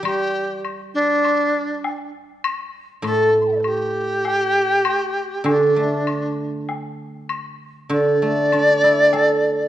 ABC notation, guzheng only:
X:1
M:4/4
L:1/8
Q:1/4=99
K:none
V:1 name="Guzheng" clef=bass
[E,G,]6 z2 | z2 A,,6 | z2 D, A,4 z | z2 D, A, D E A2 |]